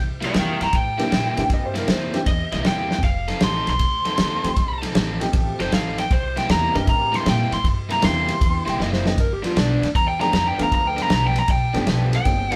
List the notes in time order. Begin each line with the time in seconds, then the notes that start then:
Already playing: C2
0.21 C3 G3 A#3 E4, snare, ride
0.25 G4 D#5
0.33 E2 C3 G3 A#3 E4, snare, ride
0.38 A#4 G5
0.61 G2 G5 A#5, snare, ride
0.73 A2 G5, kick, snare, ride
0.98 C3 E3 G3 A#3 C4 D4 E4 G4, snare, ride
1.11 A#2 C3 G3 A#3 E4, snare, ride
1.37 A2 E3 A#3 C4 D4 G4 G5, snare, ride
1.50 G2 D#5, kick, snare, ride
1.65 C5
1.74 C3 G3 A#3 E4, snare, ride
1.78 A#4
1.87 E2 C3 G3 A#3 E4 C5, snare, ride
2.13 E3 A#3 C4 D4 G4, snare, ride
2.26 E2 D#5, kick, snare, ride
2.52 C2 C3 G3 A#3 E4 D#5, snare, ride
2.64 E2 C3 G3 A#3 E4 G5, snare, ride
2.91 snare
2.98 floor tom
3.03 F1 F5, kick, snare, ride
3.28 F3 C4 D#4 A4, snare, ride
3.40 A1 F3 C4 D#4 A4 C6, snare, ride
3.67 C2 C6, snare, ride
3.79 D2, kick, snare, ride
4.05 F3 C4 D#4 A4, snare, ride
4.18 D#2 F3 C4 D#4 A4, snare, ride
4.44 D2 F3 A3 C4 D#4 G4, snare, ride
4.57 C2, kick, snare, ride
4.82 F3 C4 D#4 A4, snare, ride
4.95 A1 F3 C4 D#4 A4, snare, ride
5.20 F3 A3 C4 D#4 G4, snare, ride
5.33 A1, kick, snare, ride
5.59 F1 F3 C4 D#4 A4 C5, snare, ride
5.71 A1 F3 C4 D#4 A4 F5, snare, ride
5.98 G5, snare, ride
6.11 C2 C5, kick, snare, ride
6.36 C3 G3 A#3 E4 G5, snare, ride
6.48 E2 C3 G3 A#3 E4 A#5, snare, ride
6.74 G2 E3 C4 D4 G4 A#4 D#5, snare, ride
6.87 A2 A#5, kick, snare, ride
7.12 C3 G3 A#3 E4 C6, snare, ride
7.24 A#2 C3 G3 A#3 E4, snare, ride
7.29 G5
7.52 A2 C6, snare, ride
7.64 G2, kick, snare, ride
7.89 C3 G3 A#3 E4 A#5, snare, ride
8.02 E2 C3 E3 G3 A#3 C4 D4 E4 G4 C6, snare, ride
8.28 snare, ride
8.41 E2, kick, snare, ride
8.66 C2 C3 G3 A#3 E4 G5, snare, ride
8.78 F#1 C3 G3 A#3 E4 D#5, snare
8.93 C5, snare
9.05 F3 A3 B3 D4 G4 D#5, snare
9.18 G1 A#4, kick, snare, ride
9.33 G4
9.43 G2 F3 B3 D4 F4, snare, ride
9.56 B1 G2 F3 B3 D4, snare, ride
9.82 D2, snare, ride
9.95 E2 A#5, kick, snare, ride
10.08 G5
10.20 G2 F3 A3 B3 D4 G4 A#5, snare, ride
10.32 F2 G2 F3 B3 D4 A#5, snare, ride
10.47 G5
10.58 E2 F3 A3 B3 D4 F4, snare, ride
10.63 A#5
10.72 D2 A#5, kick, snare, ride
10.87 G5
10.97 G2 F3 B3 D4, snare, ride
11.02 A#5
11.10 B1 G2 F3 B3 D4, snare, ride
11.14 A#5
11.27 G5
11.36 A#5, snare, ride
11.48 B1 G5, kick, snare, ride
11.73 G1 G2 F3 A3 B3 D4 G4, snare, ride
11.86 B1 G2 F3 B3 D4, snare, ride
12.13 G5, snare, ride
12.25 G1 F#3 A#3 C4 D#4 G#4, kick, snare, ride
12.50 G2 F3 A3 B3 D4 G4, snare, ride